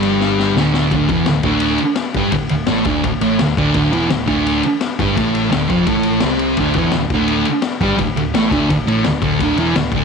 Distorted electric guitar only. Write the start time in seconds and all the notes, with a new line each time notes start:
Already playing: G2 G3
0.57 D2 D3
0.94 D2 D3
1.10 E2 E3
1.29 D2
1.44 D2 D3
2.17 G2 G3
2.33 D2
2.50 D2
2.67 A2 A3
2.85 D2 D3
3.05 D2
3.21 A2 A3
3.41 D2
3.57 D2 D3
3.75 D2 D3
3.92 E2 E3
4.09 D2
4.26 D2 D3
5.00 G2 G3
5.17 A2 A3
5.50 D2 D3
5.69 F2 F3
5.87 A2 A3
6.24 C3 C4
6.60 D2 D3
6.78 E2 E3
6.97 D2
7.14 D2 D3
7.82 G2 G3
7.98 D2
8.16 D2
8.34 A2 A3
8.51 D2 D3
8.70 D2
8.88 A2 A3
9.07 D2
9.23 D2 D3
9.42 D2 D3
9.58 E2 E3
9.76 D2
9.95 D2 D3